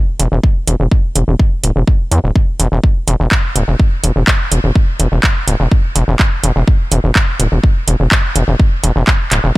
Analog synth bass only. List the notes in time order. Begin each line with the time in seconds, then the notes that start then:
0.19 E1
0.32 E1
0.67 E1
0.80 E1
1.16 E1
1.28 E1
1.63 D1
1.76 E1
2.11 E2
2.24 D1
2.60 E1
2.72 E1
3.08 E1
3.20 E1
3.56 D1
3.68 E1
4.04 E1
4.16 E1
4.52 E1
4.64 E1
5.00 E1
5.12 E1
5.47 D1
5.60 E1
5.96 E1
6.08 E1
6.44 E1
6.56 E1
6.92 E1
7.04 E1
7.40 D1
7.52 E1
7.88 E1
8.00 E1
8.36 E1
8.48 E1
8.84 E1
8.96 E1
9.31 D1
9.44 E1